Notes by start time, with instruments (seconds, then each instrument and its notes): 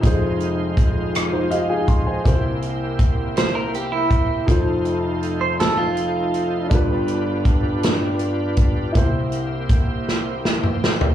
Already playing: french horn section C4
0.01 upright piano F1 F2 D#4 F4 G#4, tonewheel organ G#3 D#4 F4 C5, french horn section D#4 F4 G#4, kick, closed hi-hat
0.06 upright piano C5
0.40 closed hi-hat
0.77 kick, closed hi-hat
1.15 cross-stick, closed hi-hat
1.33 upright piano D#4 C5
1.50 upright piano G4 D#5 F5, closed hi-hat
1.70 upright piano G#4 F5 G#5
1.88 upright piano C6, kick, closed hi-hat
2.07 upright piano C5 G#5
2.23 upright piano C2 C3 E4 G4 A#4, tonewheel organ A#3 E4 G4 C5, french horn section E4 G4 A#4, kick, closed hi-hat
2.29 upright piano C5
2.62 closed hi-hat
2.99 kick, closed hi-hat
3.37 clean electric guitar C5, snare, closed hi-hat
3.55 clean electric guitar A#4
3.74 clean electric guitar G4, closed hi-hat
3.92 clean electric guitar E4
4.11 kick, closed hi-hat
4.45 upright piano F1 F2 D#4 F4, tonewheel organ A3 D#4 F4, french horn section D#4 F4 A4, kick, closed hi-hat
4.50 upright piano A4 C5
4.85 closed hi-hat
5.23 closed hi-hat
5.41 clean electric guitar C5
5.60 clean electric guitar A4, snare, closed hi-hat
5.78 clean electric guitar F4
5.97 closed hi-hat
6.34 closed hi-hat
6.69 upright piano G1 G2 D4 F4, tonewheel organ G3 D4 B4, french horn section B3 D4 G4, kick, closed hi-hat
6.73 upright piano G4 B4
7.08 closed hi-hat
7.45 kick, closed hi-hat
7.83 snare, closed hi-hat
8.19 closed hi-hat
8.57 kick, closed hi-hat
8.92 upright piano C2 C3 E4 G4, tonewheel organ A#3 E4 G4 C5, french horn section A#3 C4 E4, kick, closed hi-hat
8.96 upright piano A#4 C5
9.32 closed hi-hat
9.69 kick, closed hi-hat
10.09 snare
10.45 snare
10.63 mid tom
10.84 snare
11.01 floor tom